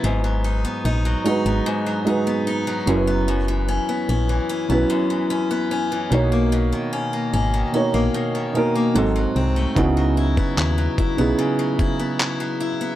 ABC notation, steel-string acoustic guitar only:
X:1
M:4/4
L:1/16
Q:1/4=74
K:C#dor
V:1 name="Steel-string acoustic guitar"
G,, F, D B, D F, D B, G,, F, D B, D F, F,, B, | F,, E, C B, C E, C B, F,, E, C B, C E, B,, A, | B,, D, C A, C D, C A, B,, D, C A, G,, F, ^B, =A, | C, F, E B, E F, E B, C, F, E B, E F, E B, |]